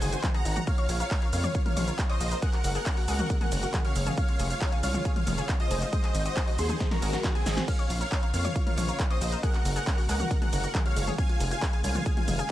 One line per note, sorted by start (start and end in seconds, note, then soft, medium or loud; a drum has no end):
0.00 0.16 F#1 medium
0.00 0.66 D#3 medium
0.00 0.65 G#3 medium
0.00 0.66 C4 medium
0.00 0.66 F#4 medium
0.00 0.09 G#4 loud
0.00 0.28 C5 medium
0.00 0.28 G#5 loud
0.00 0.28 G#6 loud
0.00 open hi-hat loud
0.00 shaker medium
0.12 0.17 F#4 medium
0.12 closed hi-hat medium
0.12 shaker soft
0.23 0.31 G#3 medium
0.23 kick loud
0.23 clap loud
0.23 closed hi-hat medium
0.23 mid tom medium
0.23 shaker soft
0.34 0.42 G#4 loud
0.34 0.63 F#5 medium
0.34 0.63 A#5 loud
0.34 0.63 A#6 medium
0.34 closed hi-hat soft
0.45 0.59 G#1 medium
0.45 0.50 D#4 medium
0.45 open hi-hat loud
0.45 shaker medium
0.56 0.64 F#4 medium
0.56 closed hi-hat medium
0.56 mid tom medium
0.56 shaker soft
0.67 2.41 C#3 medium
0.67 2.41 F3 medium
0.67 0.75 A#3 medium
0.67 5.89 A#3 medium
0.67 2.41 F4 medium
0.67 0.95 C#5 medium
0.67 0.96 F5 loud
0.67 0.95 F6 loud
0.67 kick loud
0.67 closed hi-hat medium
0.67 shaker soft
0.78 0.86 C#5 loud
0.78 closed hi-hat medium
0.89 1.03 A#1 loud
0.89 0.94 F4 medium
0.89 open hi-hat loud
0.89 ride medium
0.89 shaker medium
1.00 1.08 A#4 medium
1.00 1.28 C#5 medium
1.00 1.28 F5 loud
1.00 1.28 F6 loud
1.00 closed hi-hat medium
1.00 shaker soft
1.11 1.19 C#5 loud
1.11 kick loud
1.11 clap loud
1.11 closed hi-hat medium
1.11 shaker soft
1.22 1.27 A#4 medium
1.22 closed hi-hat soft
1.33 1.47 F2 medium
1.33 1.41 A#3 medium
1.33 1.61 C#5 medium
1.33 1.61 F5 loud
1.33 1.61 F6 loud
1.33 open hi-hat loud
1.33 ride medium
1.33 shaker medium
1.44 1.52 C#5 loud
1.44 closed hi-hat medium
1.44 mid tom medium
1.44 shaker soft
1.55 1.59 F4 medium
1.55 kick loud
1.55 closed hi-hat loud
1.55 shaker soft
1.66 1.73 A#4 medium
1.66 2.04 C#5 medium
1.66 2.04 F5 loud
1.66 2.03 F6 loud
1.66 closed hi-hat medium
1.66 mid tom medium
1.76 1.91 A#1 medium
1.76 1.84 C#5 loud
1.76 open hi-hat loud
1.76 mid tom medium
1.76 ride medium
1.76 shaker medium
1.88 1.92 A#4 medium
1.88 closed hi-hat soft
1.88 shaker soft
1.99 2.06 A#3 medium
1.99 kick loud
1.99 clap loud
1.99 closed hi-hat medium
1.99 shaker soft
2.09 2.38 C5 medium
2.09 2.17 C#5 loud
2.09 2.38 D#5 loud
2.09 2.38 D#6 loud
2.09 closed hi-hat medium
2.20 2.35 A#1 loud
2.20 2.25 F4 medium
2.20 open hi-hat loud
2.20 ride medium
2.20 shaker medium
2.31 2.39 A#4 medium
2.31 closed hi-hat soft
2.31 shaker soft
2.42 5.89 C#3 medium
2.42 7.64 G#3 medium
2.42 4.16 F#4 medium
2.42 2.50 G#4 loud
2.42 2.71 A#4 medium
2.42 2.71 F#5 loud
2.42 2.71 F#6 loud
2.42 kick loud
2.42 closed hi-hat medium
2.42 shaker soft
2.53 2.58 F#4 medium
2.53 clap soft
2.53 closed hi-hat medium
2.64 2.78 F#1 loud
2.64 2.72 G#3 medium
2.64 open hi-hat loud
2.64 ride medium
2.64 shaker medium
2.75 2.83 G#4 loud
2.75 3.03 A#4 medium
2.75 3.03 F#5 loud
2.75 3.04 F#6 loud
2.75 closed hi-hat medium
2.75 shaker soft
2.86 2.91 C#4 medium
2.86 kick loud
2.86 clap loud
2.86 closed hi-hat loud
2.86 shaker soft
2.97 3.05 F#4 medium
2.97 open hi-hat medium
3.08 3.22 C#2 medium
3.08 3.16 G#4 loud
3.08 3.36 A#4 medium
3.08 3.36 F#5 loud
3.08 3.36 F#6 loud
3.08 open hi-hat loud
3.08 ride medium
3.08 shaker medium
3.19 3.24 F#4 medium
3.19 closed hi-hat medium
3.19 mid tom medium
3.19 shaker soft
3.30 3.38 G#3 medium
3.30 kick loud
3.30 closed hi-hat medium
3.30 shaker soft
3.41 3.49 G#4 loud
3.41 3.79 A#4 medium
3.41 3.79 F#5 loud
3.41 3.79 F#6 loud
3.41 closed hi-hat medium
3.41 mid tom medium
3.52 3.66 F#1 medium
3.52 3.57 C#4 medium
3.52 open hi-hat loud
3.52 ride medium
3.52 shaker medium
3.63 3.71 F#4 medium
3.63 closed hi-hat medium
3.63 shaker soft
3.74 3.81 G#4 loud
3.74 kick loud
3.74 clap loud
3.74 closed hi-hat loud
3.74 mid tom medium
3.74 shaker soft
3.85 3.89 F#4 medium
3.85 4.13 C#5 medium
3.85 4.13 F5 loud
3.85 4.13 F6 medium
3.85 closed hi-hat medium
3.96 4.10 F#1 loud
3.96 4.03 G#3 medium
3.96 open hi-hat loud
3.96 ride medium
3.96 shaker medium
4.07 4.14 G#4 loud
4.07 closed hi-hat medium
4.07 mid tom medium
4.07 shaker soft
4.17 4.22 C#4 medium
4.17 5.91 F4 medium
4.17 4.46 C#5 medium
4.17 4.46 F5 loud
4.17 4.46 F6 loud
4.17 kick loud
4.17 closed hi-hat medium
4.17 shaker soft
4.29 4.36 F4 medium
4.29 closed hi-hat medium
4.39 4.54 F1 loud
4.39 4.47 G#4 loud
4.39 open hi-hat loud
4.39 ride medium
4.39 shaker medium
4.50 4.55 F4 medium
4.50 4.79 C#5 medium
4.50 4.79 F5 loud
4.50 4.79 F6 loud
4.50 closed hi-hat medium
4.50 shaker soft
4.61 4.69 G#3 medium
4.61 kick loud
4.61 clap loud
4.61 closed hi-hat loud
4.61 shaker soft
4.72 4.80 G#4 loud
4.72 closed hi-hat medium
4.83 4.97 C2 medium
4.83 4.88 C#4 medium
4.83 5.12 C#5 medium
4.83 5.12 F5 medium
4.83 5.12 F6 loud
4.83 open hi-hat loud
4.83 ride medium
4.83 shaker medium
4.94 5.02 F4 medium
4.94 closed hi-hat medium
4.94 mid tom medium
4.94 shaker soft
5.05 5.13 G#4 loud
5.05 kick loud
5.05 closed hi-hat loud
5.05 shaker soft
5.16 5.21 F4 medium
5.16 5.54 C#5 medium
5.16 5.54 F5 loud
5.16 5.54 F6 loud
5.16 closed hi-hat medium
5.16 mid tom medium
5.27 5.41 F1 medium
5.27 5.35 G#3 medium
5.27 open hi-hat loud
5.27 mid tom medium
5.27 ride medium
5.27 shaker medium
5.38 5.46 G#4 loud
5.38 closed hi-hat medium
5.38 shaker soft
5.49 5.54 C#4 medium
5.49 kick loud
5.49 clap loud
5.49 closed hi-hat loud
5.49 shaker soft
5.60 5.68 F4 medium
5.60 5.88 C5 medium
5.60 5.88 D#5 loud
5.60 5.88 D#6 loud
5.60 closed hi-hat medium
5.71 5.85 F1 loud
5.71 5.79 G#4 loud
5.71 open hi-hat loud
5.71 ride medium
5.71 shaker medium
5.82 5.87 F4 medium
5.82 closed hi-hat medium
5.82 shaker soft
5.93 7.66 D#3 medium
5.93 6.01 G#3 medium
5.93 7.66 C4 medium
5.93 7.66 F#4 medium
5.93 6.21 C5 medium
5.93 6.21 D#5 loud
5.93 6.21 D#6 loud
5.93 kick loud
5.93 closed hi-hat loud
5.93 shaker soft
6.04 6.11 G#4 loud
6.04 clap soft
6.04 closed hi-hat medium
6.15 6.29 G#1 loud
6.15 6.19 D#4 medium
6.15 open hi-hat loud
6.15 ride medium
6.15 shaker medium
6.26 6.33 F#4 medium
6.26 6.54 C5 medium
6.26 6.54 D#5 loud
6.26 6.54 D#6 loud
6.26 closed hi-hat medium
6.26 shaker soft
6.37 6.44 G#4 loud
6.37 kick loud
6.37 clap loud
6.37 closed hi-hat loud
6.37 shaker soft
6.48 6.52 F#4 medium
6.48 open hi-hat medium
6.58 6.73 D#2 medium
6.58 6.66 G#3 medium
6.58 6.87 G#4 medium
6.58 6.87 C5 loud
6.58 6.87 C6 medium
6.58 open hi-hat loud
6.58 ride medium
6.58 shaker medium
6.69 6.77 G#4 loud
6.69 closed hi-hat medium
6.69 mid tom medium
6.69 shaker soft
6.80 6.85 D#4 medium
6.80 kick loud
6.80 snare medium
6.80 closed hi-hat loud
6.80 shaker soft
6.91 6.99 F#4 medium
6.91 7.29 F#4 medium
6.91 7.29 A#4 loud
6.91 7.29 A#5 loud
6.91 snare medium
6.91 closed hi-hat medium
6.91 mid tom medium
7.02 7.16 G#1 medium
7.02 7.10 G#4 loud
7.02 open hi-hat loud
7.02 ride medium
7.02 shaker medium
7.13 7.18 F#4 medium
7.13 snare medium
7.13 closed hi-hat medium
7.13 shaker soft
7.24 7.32 G#3 medium
7.24 kick loud
7.24 snare medium
7.24 clap loud
7.24 closed hi-hat medium
7.24 mid tom medium
7.24 shaker soft
7.35 7.63 C4 medium
7.35 7.43 G#4 loud
7.35 7.63 G#4 loud
7.35 7.63 G#5 loud
7.35 closed hi-hat medium
7.46 7.60 G#1 loud
7.46 7.51 D#4 medium
7.46 snare loud
7.46 open hi-hat loud
7.46 ride medium
7.46 shaker medium
7.57 7.65 F#4 medium
7.57 snare medium
7.57 closed hi-hat medium
7.57 mid tom medium
7.57 shaker soft
7.68 11.15 C#3 medium
7.68 9.42 F3 medium
7.68 7.76 A#3 medium
7.68 12.52 A#3 medium
7.68 9.42 F4 medium
7.68 7.96 C#5 medium
7.68 7.96 F5 loud
7.68 7.96 F6 loud
7.68 kick loud
7.68 closed hi-hat medium
7.68 crash medium
7.68 shaker soft
7.79 7.87 C#5 loud
7.79 closed hi-hat medium
7.90 8.04 A#1 loud
7.90 7.94 F4 medium
7.90 open hi-hat loud
7.90 ride medium
7.90 shaker medium
8.01 8.08 A#4 medium
8.01 8.29 C#5 medium
8.01 8.29 F5 loud
8.01 8.29 F6 loud
8.01 closed hi-hat medium
8.01 shaker soft
8.12 8.19 C#5 loud
8.12 kick loud
8.12 clap loud
8.12 closed hi-hat loud
8.12 shaker soft
8.23 8.27 A#4 medium
8.23 closed hi-hat medium
8.34 8.48 F2 medium
8.34 8.41 A#3 medium
8.34 8.62 C#5 medium
8.34 8.62 F5 loud
8.34 8.62 F6 loud
8.34 open hi-hat loud
8.34 ride medium
8.34 shaker medium
8.45 8.52 C#5 loud
8.45 closed hi-hat medium
8.45 mid tom medium
8.45 shaker soft
8.56 8.60 F4 medium
8.56 kick loud
8.56 closed hi-hat loud
8.56 shaker soft
8.66 8.74 A#4 medium
8.66 9.04 C#5 medium
8.66 9.04 F5 loud
8.66 9.04 F6 loud
8.66 closed hi-hat medium
8.66 mid tom medium
8.78 8.92 A#1 medium
8.78 8.85 C#5 loud
8.78 open hi-hat loud
8.78 mid tom medium
8.78 ride medium
8.78 shaker medium
8.88 8.93 A#4 medium
8.88 closed hi-hat medium
8.88 shaker soft
8.99 9.07 A#3 medium
8.99 kick loud
8.99 clap loud
8.99 closed hi-hat loud
8.99 shaker soft
9.10 9.39 C5 medium
9.10 9.18 C#5 loud
9.10 9.39 D#5 loud
9.10 9.39 D#6 loud
9.10 closed hi-hat medium
9.21 9.35 A#1 loud
9.21 9.26 F4 medium
9.21 open hi-hat loud
9.21 ride medium
9.21 shaker medium
9.32 9.40 A#4 medium
9.32 closed hi-hat medium
9.32 shaker soft
9.43 12.52 G#3 medium
9.43 11.17 F#4 medium
9.43 9.51 G#4 loud
9.43 9.71 A#4 medium
9.43 9.71 F#5 loud
9.43 9.71 F#6 loud
9.43 kick loud
9.43 closed hi-hat medium
9.43 shaker soft
9.54 9.59 F#4 medium
9.54 clap soft
9.54 closed hi-hat medium
9.65 9.79 F#1 loud
9.65 9.73 G#3 medium
9.65 open hi-hat loud
9.65 ride medium
9.65 shaker medium
9.76 9.84 G#4 loud
9.76 10.04 A#4 medium
9.76 10.04 F#5 loud
9.76 10.04 F#6 loud
9.76 closed hi-hat medium
9.76 shaker soft
9.87 9.92 C#4 medium
9.87 kick loud
9.87 clap loud
9.87 closed hi-hat loud
9.87 shaker soft
9.98 10.06 F#4 medium
9.98 open hi-hat medium
10.09 10.23 C#2 medium
10.09 10.17 G#4 loud
10.09 10.37 A#4 medium
10.09 10.37 F#5 loud
10.09 10.37 F#6 loud
10.09 open hi-hat loud
10.09 ride medium
10.09 shaker medium
10.20 10.24 F#4 medium
10.20 closed hi-hat medium
10.20 mid tom medium
10.20 shaker soft
10.31 10.38 G#3 medium
10.31 kick loud
10.31 closed hi-hat loud
10.31 shaker soft
10.42 10.49 G#4 loud
10.42 10.80 A#4 medium
10.42 10.80 F#5 loud
10.42 10.79 F#6 loud
10.42 closed hi-hat medium
10.42 mid tom medium
10.53 10.67 F#1 medium
10.53 10.57 C#4 medium
10.53 open hi-hat loud
10.53 ride medium
10.53 shaker medium
10.64 10.71 F#4 medium
10.64 closed hi-hat medium
10.64 shaker soft
10.75 10.82 G#4 loud
10.75 kick loud
10.75 clap loud
10.75 closed hi-hat loud
10.75 mid tom medium
10.75 shaker soft
10.86 10.90 F#4 medium
10.86 11.14 C#5 medium
10.86 11.14 F5 loud
10.86 11.14 F6 loud
10.86 closed hi-hat medium
10.96 11.11 F#1 loud
10.96 11.04 G#3 medium
10.96 open hi-hat loud
10.96 ride medium
10.96 shaker medium
11.07 11.15 G#4 loud
11.07 closed hi-hat medium
11.07 mid tom medium
11.07 shaker soft
11.18 12.52 C#3 medium
11.18 11.23 C#4 medium
11.18 12.52 F4 medium
11.18 11.47 F5 medium
11.18 11.47 G#5 loud
11.18 11.47 G#6 loud
11.18 kick loud
11.18 closed hi-hat medium
11.18 shaker soft
11.29 11.37 F4 medium
11.29 closed hi-hat medium
11.40 11.54 F1 loud
11.40 11.48 G#4 loud
11.40 open hi-hat loud
11.40 ride medium
11.40 shaker medium
11.51 11.56 F4 medium
11.51 11.79 F5 medium
11.51 11.79 G#5 loud
11.51 11.80 G#6 loud
11.51 closed hi-hat soft
11.51 shaker soft
11.62 11.70 G#3 medium
11.62 kick loud
11.62 clap loud
11.62 closed hi-hat loud
11.62 shaker soft
11.73 11.81 G#4 loud
11.73 closed hi-hat medium
11.84 11.98 C2 medium
11.84 11.89 C#4 medium
11.84 12.12 F5 medium
11.84 12.12 G#5 loud
11.84 12.12 G#6 loud
11.84 open hi-hat loud
11.84 ride medium
11.84 shaker medium
11.95 12.03 F4 medium
11.95 closed hi-hat medium
11.95 mid tom medium
11.95 shaker soft
12.06 12.14 G#4 loud
12.06 kick loud
12.06 closed hi-hat medium
12.06 shaker soft
12.17 12.22 F4 medium
12.17 12.52 F5 medium
12.17 12.52 G#5 loud
12.17 12.52 G#6 loud
12.17 closed hi-hat medium
12.17 mid tom medium
12.28 12.42 F1 medium
12.28 12.36 G#3 medium
12.28 open hi-hat loud
12.28 mid tom medium
12.28 ride medium
12.28 shaker medium
12.39 12.47 G#4 loud
12.39 closed hi-hat medium
12.39 shaker soft